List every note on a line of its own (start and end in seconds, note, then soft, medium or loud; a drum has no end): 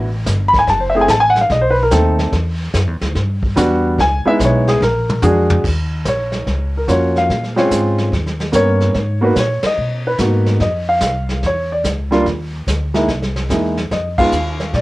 0.00 0.25 A1 medium
0.26 0.66 G1 loud
0.26 kick soft
0.26 snare medium
0.26 hi-hat pedal medium
0.48 0.58 B5 loud
0.53 kick medium
0.53 snare soft
0.59 0.66 G#5 medium
0.67 1.07 F#1 medium
0.67 0.82 A5 medium
0.67 brush sweep medium
0.67 kick soft
0.67 snare soft
0.80 0.94 C5 medium
0.90 0.99 E5 medium
0.95 1.07 A3 medium
0.95 1.07 C4 medium
0.95 1.08 E4 medium
0.95 1.08 G#4 medium
1.01 1.08 G#5 medium
1.08 1.49 A1 medium
1.08 1.23 A5 medium
1.08 kick soft
1.08 snare medium
1.08 hi-hat pedal medium
1.20 1.34 G#5 loud
1.30 1.40 F#5 loud
1.36 snare soft
1.41 1.49 F5 medium
1.50 1.90 B1 medium
1.50 1.64 D#5 medium
1.50 brush sweep soft
1.50 kick soft
1.50 snare soft
1.61 1.76 C5 medium
1.70 1.80 B4 medium
1.83 1.90 A#4 medium
1.91 2.31 D#2 loud
1.91 2.33 A3 medium
1.91 2.33 C4 medium
1.91 2.33 D#4 medium
1.91 2.33 A4 medium
1.91 kick soft
1.91 snare medium
1.91 hi-hat pedal medium
2.19 snare soft
2.32 2.72 E2 medium
2.32 brush sweep medium
2.32 kick soft
2.32 snare medium
2.74 2.87 F#2 medium
2.74 kick soft
2.74 snare medium
2.74 hi-hat pedal medium
2.87 3.01 E2 medium
3.01 3.14 D2 medium
3.01 snare soft
3.15 3.55 G2 medium
3.15 brush sweep medium
3.15 kick soft
3.15 snare soft
3.43 kick medium
3.56 3.97 E2 loud
3.56 3.97 G3 medium
3.56 3.98 B3 medium
3.56 3.98 D4 medium
3.56 3.98 F#4 medium
3.56 kick soft
3.56 snare medium
3.56 hi-hat pedal medium
3.98 4.23 C#2 medium
3.98 4.26 G#5 medium
3.98 brush sweep medium
3.98 kick soft
3.98 snare medium
4.25 4.78 G#3 medium
4.25 4.78 B3 medium
4.25 4.78 D#4 medium
4.25 4.78 E4 medium
4.25 4.40 E5 loud
4.25 muted upright bass stroke soft
4.39 4.79 B1 medium
4.39 kick soft
4.39 snare medium
4.39 hi-hat pedal medium
4.45 4.68 C#5 medium
4.68 4.81 G#4 medium
4.68 snare soft
4.81 5.21 A#1 medium
4.81 5.53 A#4 medium
4.81 snare medium
5.09 mid tom medium
5.22 5.62 F2 loud
5.22 5.64 G#3 medium
5.22 5.64 D4 medium
5.22 5.63 F#4 medium
5.22 5.64 G#4 medium
5.22 floor tom medium
5.22 hi-hat pedal medium
5.50 floor tom loud
5.64 6.04 D#2 medium
5.64 brush sweep soft
5.64 kick medium
5.64 snare soft
5.64 crash medium
6.05 6.45 A#1 medium
6.05 6.71 C#5 medium
6.05 kick soft
6.05 snare medium
6.05 hi-hat pedal medium
6.32 snare soft
6.47 6.86 C#2 medium
6.47 brush sweep soft
6.47 kick soft
6.47 snare soft
6.77 6.89 A#4 medium
6.88 7.28 F2 medium
6.88 7.29 A#3 soft
6.88 7.29 C#4 soft
6.88 7.30 F4 medium
6.88 7.29 F#4 medium
6.88 7.16 C#5 medium
6.88 kick soft
6.88 snare medium
6.88 hi-hat pedal medium
7.16 7.55 F5 medium
7.16 snare soft
7.29 7.69 A#2 medium
7.29 brush sweep soft
7.29 kick soft
7.29 snare soft
7.43 snare soft
7.56 8.09 G#3 medium
7.56 8.09 C4 medium
7.56 8.09 C#4 medium
7.56 8.09 F4 medium
7.56 7.71 C#5 medium
7.56 snare soft
7.71 8.11 G#2 medium
7.71 kick soft
7.71 snare medium
7.71 hi-hat pedal medium
7.98 snare soft
8.12 8.52 D#2 medium
8.12 brush sweep soft
8.12 kick soft
8.12 snare soft
8.26 snare soft
8.40 snare soft
8.52 8.93 G2 loud
8.52 8.94 A#3 medium
8.52 8.94 B3 medium
8.52 8.94 C#4 medium
8.52 8.95 A#4 medium
8.52 9.19 C#5 medium
8.52 kick soft
8.52 snare medium
8.52 hi-hat pedal medium
8.80 snare soft
8.94 9.35 G#2 medium
8.94 brush sweep medium
8.94 kick soft
8.94 snare soft
9.21 9.34 A#3 medium
9.21 9.34 B3 medium
9.21 9.35 D#4 medium
9.21 9.35 F#4 medium
9.21 9.36 B4 medium
9.36 9.61 A#2 medium
9.36 9.64 C#5 medium
9.36 kick soft
9.36 snare medium
9.36 hi-hat pedal soft
9.63 10.03 D#5 medium
9.63 muted upright bass stroke soft
9.63 snare medium
9.63 ride medium
9.77 10.18 B2 medium
9.77 brush sweep soft
10.07 10.15 B4 medium
10.18 10.59 G#2 medium
10.18 10.60 A#3 medium
10.18 10.61 B3 medium
10.18 10.61 D#4 medium
10.18 10.61 F#4 medium
10.18 kick soft
10.18 snare medium
10.18 hi-hat pedal medium
10.46 snare soft
10.60 11.00 F2 medium
10.60 10.87 D#5 medium
10.60 brush sweep soft
10.60 kick soft
10.60 snare soft
10.89 11.40 F5 medium
11.01 11.41 C2 medium
11.01 kick soft
11.01 snare medium
11.01 hi-hat pedal medium
11.29 snare soft
11.43 11.83 E2 medium
11.43 11.71 C#5 medium
11.43 brush sweep soft
11.43 kick soft
11.43 snare soft
11.72 11.85 D5 medium
11.84 12.24 C#2 medium
11.84 kick soft
11.84 snare medium
11.84 hi-hat pedal medium
12.11 12.24 G3 medium
12.11 12.24 A#3 medium
12.11 12.24 D4 medium
12.11 12.24 F4 medium
12.11 snare soft
12.26 12.66 D#2 medium
12.26 brush sweep soft
12.26 kick soft
12.26 snare soft
12.67 13.07 D2 medium
12.67 kick soft
12.67 snare medium
12.67 hi-hat pedal medium
12.94 13.07 G#3 medium
12.94 13.07 A#3 medium
12.94 13.07 D#4 medium
12.94 13.07 E4 medium
12.94 snare soft
13.08 13.48 C2 medium
13.08 brush sweep soft
13.08 kick soft
13.08 snare soft
13.22 snare soft
13.36 snare soft
13.50 13.90 E2 medium
13.50 13.75 G#3 medium
13.50 13.75 A#3 soft
13.50 13.75 D#4 medium
13.50 13.75 E4 medium
13.50 kick soft
13.50 snare medium
13.50 hi-hat pedal medium
13.77 snare soft
13.91 14.31 F2 medium
13.91 14.18 D#5 medium
13.91 brush sweep soft
13.91 kick soft
13.91 snare soft
14.18 14.31 G#3 medium
14.18 14.31 B3 medium
14.18 14.31 D#4 medium
14.18 14.32 F4 medium
14.18 14.70 F5 loud
14.18 kick medium
14.18 ride medium
14.32 14.72 D#2 medium
14.32 hi-hat pedal soft
14.60 snare soft
14.73 14.81 A#2 medium
14.73 14.81 D5 medium
14.73 brush sweep soft
14.73 kick soft
14.73 snare soft